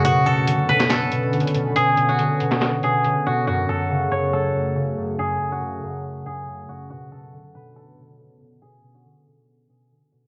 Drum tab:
HH |x-----------x-----------x-----x-----x-x-x-x-----|x-----x-----x-----x-----x-----x-----x-----------|------------------------------------------------|------------------------------------------------|
CP |---------------------x--x-----------------------|---------------------x--x-----------------------|------------------------------------------------|------------------------------------------------|
SD |---------------------o--o-----------------------|---------------------o--o-----------------------|------------------------------------------------|------------------------------------------------|

HH |------------------------------------------------|------------------------------------------------|
CP |------------------------------------------------|------------------------------------------------|
SD |------------------------------------------------|------------------------------------------------|